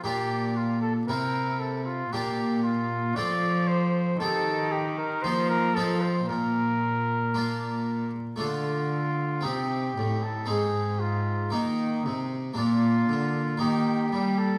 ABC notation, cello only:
X:1
M:4/4
L:1/8
Q:1/4=115
K:Bb
V:1 name="Cello" clef=bass
B,,4 C,4 | B,,4 F,4 | E,4 F,2 F,2 | B,,6- B,, z |
D,4 C,2 A,,2 | _A,,4 E,2 C,2 | B,,2 D,2 E,2 G,2 |]